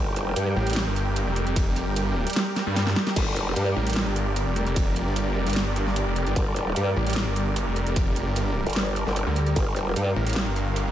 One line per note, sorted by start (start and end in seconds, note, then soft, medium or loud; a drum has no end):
0.00 0.35 G1 loud
0.00 10.91 G3 medium
0.00 10.91 G4 medium
0.00 10.91 A#4 medium
0.00 3.14 G5 medium
0.16 closed hi-hat medium
0.36 0.55 G2 medium
0.36 closed hi-hat medium
0.36 ride soft
0.56 0.85 A1 medium
0.67 closed hi-hat soft
0.70 closed hi-hat medium
0.73 snare loud
0.73 closed hi-hat medium
0.76 closed hi-hat medium
0.76 ride medium
0.87 1.25 G1 loud
0.96 closed hi-hat medium
1.16 closed hi-hat medium
1.16 ride soft
1.27 1.45 F1 loud
1.36 closed hi-hat medium
1.47 1.85 F1 loud
1.47 closed hi-hat soft
1.56 kick loud
1.56 closed hi-hat medium
1.56 ride medium
1.76 closed hi-hat medium
1.87 2.25 G1 loud
1.96 closed hi-hat medium
1.96 ride medium
2.27 closed hi-hat medium
2.30 closed hi-hat medium
2.33 snare loud
2.33 closed hi-hat medium
2.36 closed hi-hat medium
2.36 ride medium
2.56 snare medium
2.56 closed hi-hat medium
2.67 2.95 G2 medium
2.76 snare medium
2.76 closed hi-hat medium
2.76 ride soft
2.87 snare medium
2.96 snare loud
2.96 closed hi-hat medium
3.07 snare medium
3.07 closed hi-hat soft
3.16 3.55 G1 loud
3.16 9.54 D5 medium
3.16 kick loud
3.16 closed hi-hat medium
3.16 crash medium
3.16 ride medium
3.36 closed hi-hat medium
3.56 3.75 G2 loud
3.56 closed hi-hat medium
3.56 ride medium
3.76 4.05 A1 loud
3.87 closed hi-hat medium
3.90 closed hi-hat medium
3.93 snare loud
3.93 closed hi-hat medium
3.96 closed hi-hat medium
3.96 ride medium
4.07 4.45 G1 loud
4.16 closed hi-hat medium
4.36 closed hi-hat medium
4.36 ride soft
4.47 4.65 F1 loud
4.56 closed hi-hat medium
4.67 5.05 F1 loud
4.67 closed hi-hat soft
4.76 kick loud
4.76 closed hi-hat medium
4.76 ride medium
4.96 closed hi-hat medium
5.07 5.45 G1 loud
5.16 closed hi-hat medium
5.16 ride soft
5.47 5.65 G1 loud
5.47 closed hi-hat medium
5.50 closed hi-hat medium
5.53 snare loud
5.53 closed hi-hat medium
5.56 closed hi-hat medium
5.56 ride medium
5.67 6.05 G1 loud
5.76 closed hi-hat medium
5.87 snare soft
5.96 closed hi-hat medium
5.96 ride soft
6.07 6.25 F1 loud
6.16 closed hi-hat medium
6.27 6.35 G1 loud
6.27 closed hi-hat soft
6.36 6.75 G1 loud
6.36 kick loud
6.36 closed hi-hat medium
6.36 ride medium
6.56 closed hi-hat medium
6.76 6.95 G2 loud
6.76 closed hi-hat medium
6.76 ride soft
6.96 7.25 A1 medium
7.07 closed hi-hat medium
7.10 closed hi-hat medium
7.13 snare loud
7.13 closed hi-hat medium
7.16 closed hi-hat medium
7.16 ride medium
7.27 7.65 G1 loud
7.36 closed hi-hat medium
7.56 closed hi-hat medium
7.56 ride soft
7.67 7.85 F1 loud
7.76 closed hi-hat medium
7.87 8.25 F1 loud
7.87 closed hi-hat soft
7.96 kick loud
7.96 closed hi-hat medium
7.96 ride medium
8.16 closed hi-hat medium
8.27 8.65 G1 loud
8.36 closed hi-hat medium
8.36 ride soft
8.67 9.05 G1 medium
8.67 closed hi-hat medium
8.70 closed hi-hat medium
8.73 snare loud
8.73 closed hi-hat medium
8.76 closed hi-hat medium
8.76 ride medium
8.96 closed hi-hat medium
9.07 9.25 G1 loud
9.07 snare soft
9.16 closed hi-hat medium
9.16 ride soft
9.27 9.55 D2 medium
9.36 closed hi-hat medium
9.47 closed hi-hat soft
9.56 9.95 G1 loud
9.56 10.91 F5 medium
9.56 kick loud
9.56 closed hi-hat medium
9.56 ride medium
9.76 closed hi-hat medium
9.96 10.15 G2 loud
9.96 closed hi-hat medium
9.96 ride soft
10.16 10.45 A1 medium
10.27 closed hi-hat medium
10.30 closed hi-hat medium
10.33 snare loud
10.33 closed hi-hat medium
10.36 closed hi-hat medium
10.36 ride medium
10.47 10.85 G1 loud
10.56 closed hi-hat medium
10.76 closed hi-hat medium
10.76 ride soft
10.87 10.91 F1 loud